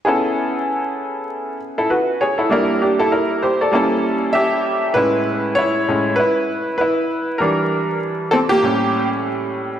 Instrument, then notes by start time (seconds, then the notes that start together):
upright piano
0.05 B3 C#4 E4 G#4 A4
1.78 E4 A4
1.90 F#4 B4
2.21 G#4 C#5
2.38 E4 A4
2.49 G3 A#3 D4 E4 A#4
2.82 D4 G4
2.99 E4 A4
3.12 E4 A#4
3.42 G4 C5
3.61 A4 D5
3.71 G3 A#3 C#4 E4 A4
4.33 G4 E5
4.94 A2 G#3 C#4 E4 B4
5.55 E4 C#5
5.88 A2 G#3 C#4
6.16 E4 B4
6.78 E4 B4
7.38 E3 G3 D4 A#4
8.31 C4 A4
8.49 A#3 G4
8.63 A2 G3 C#4